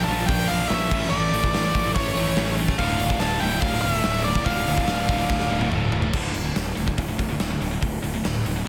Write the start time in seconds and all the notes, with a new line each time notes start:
0.04 A#1 F3 A5, open hi-hat
0.09 A#2 A#3 F4
0.19 A#2 F3
0.27 A#1 A#2 F3 D4 G5, kick, open hi-hat
0.48 A#1 A#2 F3 D4 F5, open hi-hat
0.62 A#2 F3
0.68 A#1 A#2 F3 C#4 E5, snare, open hi-hat
0.74 A#3
0.91 A1 A2 E3 A3, kick, crash
1.03 A2 E3
1.10 A1 A2 E3 A3 D5
1.33 A1 A2 E3, open hi-hat
1.44 A2 E3, kick
1.53 A1 A2 E3, snare, open hi-hat
1.58 A3
1.74 A1 A2 E3, kick, open hi-hat
1.84 A2 E3
1.94 A1 A2 E3 A3 C#5, kick, open hi-hat
2.16 A1 A2 E3 A3, open hi-hat
2.27 A2 E3
2.37 A1 A2 E3, snare, open hi-hat
2.58 A2 E3, open hi-hat
2.68 A2 E3, kick, snare
2.78 D1 D2 A2 D3 D4 F5, kick, open hi-hat
3.00 D1 D2 A2, open hi-hat
3.10 D2 A2, kick
3.20 D1 D2 A2 F4 A5, snare, open hi-hat
3.40 D1 D2 A2 D3 E4 G5, open hi-hat
3.53 D2 A2
3.60 D1 D2 A2 D4 F5, kick, open hi-hat
3.81 D1 D2 A2 A3 F5, open hi-hat
3.92 D2 A2 E5
4.04 D1 D2 A2, snare, open hi-hat
4.08 D3
4.24 D2 A2 A#3 D5, open hi-hat
4.35 D2 A2, kick, snare
4.45 D1 D2 A2 D3 D4 F5, kick, open hi-hat
4.67 D1 D2 A2, open hi-hat
4.77 D2 A2, kick, snare
4.88 D1 D2 A2, snare, open hi-hat
5.08 D1 D2 A2 D3, kick, open hi-hat
5.19 D2 A2
5.29 D1 D2 A2, kick, snare
5.40 snare
5.50 D1 D2 A2
5.61 D2 A2, high tom
5.72 D1 D2 A2 D3, mid tom
5.92 D2 A2, floor tom
6.02 D2 A2, floor tom
6.13 D1 D2 A2 D3, kick, crash
6.34 D1 D2 A2, open hi-hat
6.45 D2 A2
6.56 D1 D2 A2, snare, open hi-hat
6.77 D1 D2 A2, open hi-hat
6.88 D2 A2, kick
6.98 D1 D2 A2, kick, open hi-hat
7.09 D2 A2
7.19 D1 D2 A2, kick, open hi-hat
7.30 D2 A2
7.40 D1 D2 A2, snare, open hi-hat
7.52 D2 A2
7.61 D1 D2 A2, open hi-hat
7.73 D2 A2
7.81 D1 D2, kick, open hi-hat
7.85 D2 A2
8.04 D1 D2 A2, open hi-hat
8.15 D2 A2
8.25 D1 D2 A2, snare, open hi-hat
8.46 D1 D2 A2, open hi-hat
8.56 D2 A2